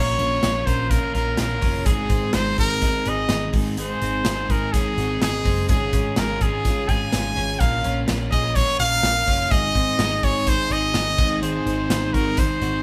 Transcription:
Already playing: A#1 A#2 F3 A#3 C#4 F4 A#4 C#5
0.18 A#1 A#3 C#4 F4, closed hi-hat
0.42 A#1 A#2 F3 A#3 C#4 F4, snare, closed hi-hat
0.66 A#1 A#3 C#4 F4 A#4 C5, kick, closed hi-hat
0.89 F3 A#3 C#4 F4 A#4, kick, snare, closed hi-hat
1.13 A#1 A#3 C#4 F4 A#4, closed hi-hat
1.37 A#1 A#2 F3 A#3 C#4 F4 A#4, snare, closed hi-hat
1.61 F#1 A#3 C#4 F4, kick, open hi-hat
1.86 G#1 G#2 D#3 G#3 C4 D#4 G#4, kick, closed hi-hat
2.09 G#1 G#3 C4 D#4, kick, closed hi-hat
2.33 G#1 G#2 D#3 G#3 C4 D#4 C5, snare, closed hi-hat
2.58 G#1 G#3 C4 D#4 G#4 A#4, kick, closed hi-hat
2.81 D#3 G#3 C4 D#4, kick, snare, closed hi-hat
3.06 G#1 G#3 C4 D#4 G#4 D#5, closed hi-hat
3.29 G#1 G#2 D#3 G#3 C4 D#4, snare, closed hi-hat
3.53 G#1 G#2 G#3 C4 D#4, kick, open hi-hat
3.77 G#2 D#3 G#3 C4 D#4 G#4 C5, closed hi-hat
4.02 G#1 G#3 C4 D#4, closed hi-hat
4.25 G#1 G#2 D#3 G#3 C4 D#4, snare, closed hi-hat
4.49 G#1 G#3 C4 D#4 G#4 A#4, kick, closed hi-hat
4.72 D#3 G#3 C4 C#4 D#4 G#4, kick, snare, closed hi-hat
4.86 D#4
4.98 G#1 G#3 C4 D#4 F#4, closed hi-hat
5.09 G#4
5.21 G#1 G#2 D#3 G#3 C4 D#4 G#4, snare, closed hi-hat
5.45 F#1 G#3 C4 D#4, kick, open hi-hat
5.69 G#1 G#2 C#3 G#3 C#4 F4 G#4, kick, closed hi-hat
5.92 G#1 G#3 C#4 F4, kick, closed hi-hat
6.16 G#1 G#2 C#3 G#3 C#4 F4 A#4, snare, closed hi-hat
6.41 G#1 G#3 C#4 F4 G#4, kick, closed hi-hat
6.65 C#3 G#3 C#4 F4, kick, snare, closed hi-hat
6.88 G#1 G#3 C#4 F4 G#4 G#5, kick, closed hi-hat
7.12 G#1 G#2 C#3 G#3 C#4 F4, snare, closed hi-hat
7.36 G#1 G#3 C#4 F4, open hi-hat
7.59 A#1 A#2 F3 A#3 C#4 F4 A#4 F5, kick, closed hi-hat
7.83 A#1 A#3 C#4 F4, closed hi-hat
8.07 A#1 A#2 F3 A#3 C#4 F4, snare, closed hi-hat
8.31 A#1 A#3 C#4 F4 G#4 D#5, kick, closed hi-hat
8.44 A#4
8.55 F3 A#3 C#4 F4 C#5, kick, snare, closed hi-hat
8.79 A#1 A#3 C#4 F4 A#4 F5, closed hi-hat
9.03 A#1 A#2 F3 A#3 C#4 F4, snare, closed hi-hat
9.27 F#1 A#3 C#4 F4, kick, open hi-hat
9.51 G#1 G#2 D#3 G#3 C4 D#4 G#4 D#5, kick, closed hi-hat
9.75 G#1 G#3 C4 D#4, kick, closed hi-hat
9.99 G#1 G#2 D#3 G#3 C4 D#4, snare, closed hi-hat
10.23 G#1 G#3 C4 D#4 G#4 C#5, kick, closed hi-hat
10.46 D#3 G#3 C4 D#4 C5, kick, snare, closed hi-hat
10.69 G#1 G#3 C4 D#4 G#4 D#5, closed hi-hat
10.93 G#1 G#2 D#3 G#3 C4 D#4, snare, closed hi-hat
11.17 G#1 G#2 G#3 C4 D#4, kick, crash
11.41 G#2 D#3 G#3 C4 D#4 G#4 C5, closed hi-hat
11.65 G#1 G#3 C4 D#4, closed hi-hat
11.88 G#1 G#2 D#3 G#3 C4 D#4, snare, closed hi-hat
12.13 G#1 G#3 C4 D#4 F#4 A#4, kick, closed hi-hat
12.25 G#4
12.36 D#3 G#3 C4 D#4 C5, kick, closed hi-hat
12.60 G#1 G#3 C4 D#4 F#4, closed hi-hat
12.74 G#4

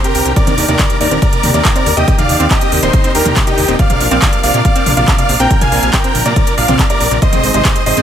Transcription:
0.04 C3 G4 A#4, closed hi-hat
0.15 C2 C3, open hi-hat
0.26 C2 C3 D3 G3 C4 G4, closed hi-hat
0.36 C3 D#3 A#3 D4 G4 A#4 D5, kick, closed hi-hat
0.47 D#2 C4, closed hi-hat, mid tom
0.58 D#2 D3 D#3 A#3 D4 G4, open hi-hat
0.68 D#2 C3 A#4 D5, closed hi-hat
0.79 C3 D#3 A#3 D4 G4, kick, clap, closed hi-hat
0.90 C3, closed hi-hat
1.00 D#2 C3 D#3 A#3 D4 G4 A#4 D5, open hi-hat
1.11 D#1 C4, closed hi-hat
1.22 D3 D#3 A#3 D4 G4 A#4 D5, kick, closed hi-hat
1.33 C3 D#3 A#3 D4 G4, closed hi-hat
1.43 D#2 C3 D#3 A#3 D4 G4, open hi-hat, mid tom
1.54 D#2 C3 A#4 D5, closed hi-hat
1.65 C3 D#3 A#3 D4 G4, kick, clap, closed hi-hat
1.75 C4 A#4 D5, closed hi-hat
1.86 D#2 D3, open hi-hat
1.97 D#2 C3 D#3 A#3 D4 G4 D#5, closed hi-hat
2.08 C3 D#3 A#3 D4 G4, kick, closed hi-hat
2.18 D#2 C3 D5 F5, closed hi-hat, mid tom
2.29 D#2 C3 D#3 A#3 D4 G4, open hi-hat
2.40 D#2 C4, closed hi-hat
2.50 D3 D#3 A#3 D4 G4 D#5, kick, clap, closed hi-hat
2.61 C3, closed hi-hat
2.72 D#2 C3 D#3 A#3 D4 G4, open hi-hat
2.83 D#1 C3 D#4 C5, closed hi-hat
2.93 C3 D#3 A#3 D4 G4, kick, closed hi-hat
3.04 D#3 A#3 C4 D4 G4, closed hi-hat
3.15 D#2 D3 D#3 A#3 D4 G4 A#4, open hi-hat
3.26 D#2 C3, closed hi-hat, mid tom
3.36 D#3 A#3 D4 G4, kick, clap, closed hi-hat
3.47 C3 D#4 G4, closed hi-hat
3.58 D#2 C3, open hi-hat
3.68 D#1 D#3 A#3 C4 D4 G4, closed hi-hat
3.79 C3 F3 A#3 D4 A#4 D5 F5, kick, closed hi-hat
3.90 A#1 C3, closed hi-hat, mid tom
4.01 A#1 C3 F3 A#3 D4 A#4, open hi-hat
4.11 A#1 C4 D5 F5, closed hi-hat
4.22 D3 F3 A#3 D4 A#4, kick, clap, closed hi-hat
4.33 C3, closed hi-hat
4.43 A#1 C3 F3 A#3 D4 A#4 D5 F5, open hi-hat
4.54 A#2 C3, closed hi-hat
4.65 C3 F3 A#3 D4 A#4 D5 F5, kick, closed hi-hat
4.76 F3 A#3 C4 D4 A#4, closed hi-hat
4.86 A#1 D3 F3 A#3 D4 A#4, open hi-hat, mid tom
4.97 A#1 C3 D5 F5, closed hi-hat
5.08 C3 F3 A#3 D4 A#4, kick, clap, closed hi-hat
5.18 C3 D5 F5, closed hi-hat
5.29 A#1 C3, open hi-hat
5.40 A#1 F3 A#3 C4 D4 A#4 G5, closed hi-hat
5.50 D3 F3 A#3 D4 A#4, kick, closed hi-hat
5.61 A#1 C3 F5 G#5, closed hi-hat, mid tom
5.72 A#1 C3 F3 A#3 D4 A#4, open hi-hat
5.83 A#1 C3, closed hi-hat
5.93 C3 F3 A#3 D4 A#4 G5, kick, clap, closed hi-hat
6.04 C4, closed hi-hat
6.15 A#1 D3 F3 A#3 D4 A#4, open hi-hat
6.25 A#2 C3 A#4 D5, closed hi-hat
6.36 C3 F3 A#3 D4 A#4, kick, closed hi-hat
6.47 C3 F3 A#3 D4 A#4, closed hi-hat
6.58 A#1 C3 F3 A#3 D4 A#4 D5 F5, open hi-hat
6.68 A#1 C4, closed hi-hat, mid tom
6.79 F3 A#3 D4 A#4, kick, clap, closed hi-hat
6.90 C3 A#4 D5, closed hi-hat
7.00 A#1 C3, open hi-hat
7.11 A#1 C3 F3 A#3 D4 A#4, closed hi-hat
7.22 C3 D#3 G#3 C4 G#4 C5 D#5, kick, closed hi-hat
7.33 G#1 C4, closed hi-hat, mid tom
7.43 G#1 D3 D#3 G#3 C4 G#4, open hi-hat
7.54 G#1 C3 C5 D#5, closed hi-hat
7.65 D#3 G#3 C4 G#4, kick, clap, closed hi-hat
7.75 C3, closed hi-hat
7.86 G#1 C3 D#3 G#3 C4 G#4 C5 D#5, open hi-hat
7.97 G#2 C4, closed hi-hat

